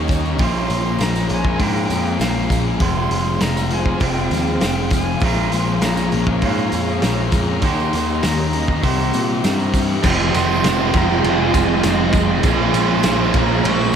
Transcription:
Already playing: D#2 D#3 A#3 C#4 G4 C#5 D#5 A#5
0.08 D#3 A#3 D#4, kick, open hi-hat, tambourine
0.25 tambourine
0.36 A#1 A#2 F3 G#3 G#4 F5 A#5, kick, open hi-hat
0.40 A#3 C#4 F4 C6
0.70 A#1, open hi-hat, tambourine
0.98 A#1 A#2 F3 A#3 F4, snare, open hi-hat, tambourine
1.03 A#5
1.15 tambourine
1.29 A#1 F3 A#3 C#4 G#5, open hi-hat
1.45 kick
1.58 G#2 A#2 F3 A#3 C#4 F4 G5, kick, open hi-hat
1.62 F4
1.76 tambourine
1.90 F2 G#3, open hi-hat, tambourine
2.06 tambourine
2.19 A#1 A#2 F3 A#3 C#4 F5, snare, open hi-hat, tambourine
2.49 A#1 F3 G#3 A#3, kick, open hi-hat, tambourine
2.78 F1 F2 C3 F3 G#3 C4 C5 C6, kick, open hi-hat
2.83 F4
3.11 F1, open hi-hat
3.40 F1 F2 C3 F3 F4 A#5, snare, open hi-hat, tambourine
3.57 tambourine
3.69 C3 F3 C4, open hi-hat
3.73 G#5
3.86 kick
4.00 F1 F2 C3 F3 G#3 C4 F4 G5, kick, open hi-hat
4.18 tambourine
4.31 D#2 G#3, open hi-hat, tambourine
4.47 tambourine
4.61 F1 F2 C3 F3 C4 G5, snare, open hi-hat, tambourine
4.90 C3 F3 G#3 G#5, kick, open hi-hat, tambourine
5.20 A#1 A#2 F3 G#3 A#3 C#4 C#5 A#5, kick, open hi-hat
5.26 F4
5.52 A#1 C6, open hi-hat, tambourine
5.81 A#1 A#2 F3 A#3 F4 A#5, snare, open hi-hat, tambourine
5.97 tambourine
6.12 A#1 F3 A#3 C#4, open hi-hat
6.27 kick
6.41 G#2 A#2 F3 A#3 C#4 F4 F5, kick, open hi-hat
6.45 F4
6.58 tambourine
6.72 F2 G#3, open hi-hat, tambourine
6.89 tambourine
7.02 A#1 A#2 F3 A#3 C#4, snare, open hi-hat, tambourine
7.31 F2 F3 G#3 A#3, kick, open hi-hat, tambourine
7.61 D#2 D#3 A#3 C#4 G4 C#5 D#5 C6, kick, open hi-hat, tambourine
7.65 D#4 G4
7.80 tambourine
7.93 D#2, open hi-hat, tambourine
8.10 tambourine
8.22 D#2 D#3 A#3 D#4 G4 A#5, snare, open hi-hat, tambourine
8.53 A#3 C#4 D#4, open hi-hat
8.68 kick
8.81 C2 C3 E3 G3 A#3 E4 G4 C5 E5 C6, kick, open hi-hat, tambourine
8.85 G3 C4 G4
9.13 A#2 A#3, open hi-hat, tambourine
9.43 G2 C3 G3 C4, snare, open hi-hat, tambourine
9.60 tambourine
9.74 E3 G3 C4, kick, open hi-hat, tambourine
10.03 F1 F2 C3 D#3 F3 G#3 C4 F4 G#4 D#5 F5 C6, kick, crash, tambourine
10.07 F3
10.34 F1 D#3 C6, ride, tambourine
10.64 F1 F2 C3 F3 C4, snare, ride, tambourine
10.93 F1 C3 F3 F4 A#5, kick, snare, ride, tambourine
10.98 F2
11.22 F1 F3 G#3 C4 F4 G#5, ride
11.54 F1 D#3, kick, ride, tambourine
11.83 F1 F2 C3 F3 G#3, snare, ride, tambourine
11.88 D#5
12.12 F1 C3 F3 C4, kick, ride, tambourine
12.42 A#1 A#2 F3 G#3 A#3 C#4 C#5 F5 A#5, kick, ride, tambourine
12.46 F4
12.74 A#1 G#3 C6, ride, tambourine
13.03 A#1 A#2 F3 A#3 C#4, snare, ride, tambourine
13.33 A#1 A#2 F3 A#3 F4, kick, ride
13.38 A#5
13.62 A#1 A#2 F3 G#3 A#3 C#4 F4, ride
13.68 C#6

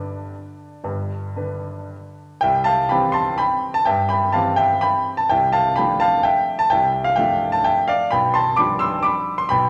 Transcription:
Already playing: G1 G2 D3 D4 B4 D5
0.84 G1 G2
1.36 D3 D4 B4
2.41 C2 E5 G5
2.64 F5 A5
2.89 E3 C4 G4 G5 B5
3.12 A5 C6
3.38 G5 B5
3.74 A5
3.85 G2 E5 G5
4.09 G5 B5
4.32 E3 C4 G4 F5 A5
4.56 E5 G5
4.81 G5 B5
5.17 A5
5.29 C2 E5 G5
5.52 F5 A5
5.76 F3 A3 D4 G5 B5
6.00 F5 A5
6.23 E5 G5
6.59 A5
6.70 C2 E5 G5
7.04 F5
7.16 F3 A3 D4 E5 G5
7.52 A5
7.64 E5 G5
7.88 D5 F5
8.11 B1 G5 B5
8.34 A5 C6
8.56 F3 G3 D4 B5 D6
8.79 C6 E6
9.03 B5 D6
9.38 C6
9.49 B1 G5 B5

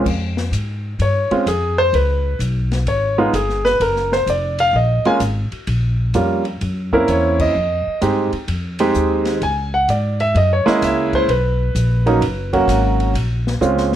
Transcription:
0.06 F2, kick, crash
0.37 snare
0.51 G#2, hi-hat pedal, ride
0.99 G2 C#5, ride
1.31 G#3 C4 C#4 F4, muted upright bass stroke, ride
1.46 F2 G#4, hi-hat pedal, ride
1.78 C5
1.93 C#2 B4, ride
2.39 B1, hi-hat pedal, ride
2.71 snare, ride
2.86 G#1 C#5, ride
3.18 G#3 B3 D#4 F4
3.33 G1 G#4, hi-hat pedal, ride
3.49 snare
3.65 B4, snare
3.80 F#1 A#4, ride
3.96 snare
4.12 C5, snare
4.26 F1 D5, hi-hat pedal, ride
4.58 F5, ride
4.73 A#1 D#5
5.05 G#3 A#3 C#4 F4 G#5, muted upright bass stroke, ride
5.20 G#1, hi-hat pedal, ride
5.52 muted upright bass stroke, ride
5.67 A#1, ride
6.14 F2 G3 A#3 C#4 F4, hi-hat pedal, ride
6.45 ride
6.61 F#2, ride
6.93 A#3 C4 C#4 E4 A#4, kick
7.08 E2 C#5, hi-hat pedal, ride
7.39 D#5, kick, crash
7.55 F2
7.87 muted upright bass stroke
8.01 G2 G#3 C4 D#4 G4, hi-hat pedal, ride
8.33 muted upright bass stroke, ride
8.48 F2, ride
8.79 G#3 C4 D#4 G4, ride
8.94 D#2, hi-hat pedal
9.25 snare, ride
9.42 C#2 G#5, ride
9.74 F#5
9.88 G#2 D5, hi-hat pedal, ride
10.20 E5, ride
10.35 F#2 D#5, ride
10.53 C#5
10.66 G#3 A#3 C#4 E4 D#5, muted upright bass stroke, snare
10.81 C#2 E5, snare, hi-hat pedal, ride
11.13 C5, kick, ride
11.28 B1 B4, ride
11.75 A#1, hi-hat pedal, ride
12.06 F#3 A#3 C#4 D#4, ride
12.21 F#1, ride
12.53 F#3 A#3 C#4 F#4, kick, ride
12.68 G#1, hi-hat pedal, ride
13.00 ride
13.14 A#1, ride
13.47 snare
13.61 C#2 G#3 C4 C#4 F4, hi-hat pedal
13.77 snare
13.92 snare

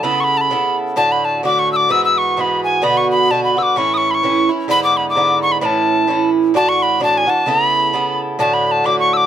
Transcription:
0.03 C#3 B3 E4 A4 B5
0.20 B5 C#6
0.37 A5 B5
0.50 C#3 B3 E4 A4
0.96 A2 D3 A3 F#4 A5
1.12 B5
1.25 A5
1.43 A2 D3 A3 F#4 D6
1.59 C#6
1.73 D6 E6
1.89 G#2 E3 B3 F#4 E6
2.05 E6
2.18 C#6
2.37 G#2 E3 B3 F#4 C#6
2.41 B5
2.64 G#5
2.82 B2 D3 B3 F#4 B5
2.97 C#6
3.11 B5
3.30 B2 D3 B3 F#4 A5
3.44 B5
3.57 D3 B3 F#4 E6
3.63 D6
3.76 A2 E3 C#4 E4 C#6
3.94 C#6 D#6
4.11 B5 C#6
4.23 A2 E3 C#4 E4
4.49 E3 C#4 E4
4.68 G#2 D3 B3 E4 B5
4.84 D6
4.97 B5
5.10 D6
5.15 G#2 D3 B3 E4
5.42 C#6
5.52 B5
5.61 A2 E3 C#4 E4 B5
5.65 A5
6.07 A2 E3 C#4 E4
6.54 A2 E3 D4 F#4 A5
6.69 C#6
6.82 B5
7.00 A2 E3 D4 F#4 A5
7.18 G#5
7.27 E3 D4 F#4 A5
7.46 C#3 B3 E4 A4 B5
7.93 C#3 B3 E4 A4
8.39 A2 D3 A3 F#4 A5
8.54 B5
8.67 B5
8.71 A5
8.84 A2 D3 A3 F#4 D6
9.00 C#6
9.13 D6 E6

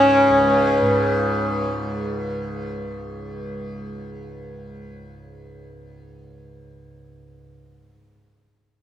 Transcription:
Already playing: C#2 G#2 C#3 C#4
0.30 C#2
0.81 G#2

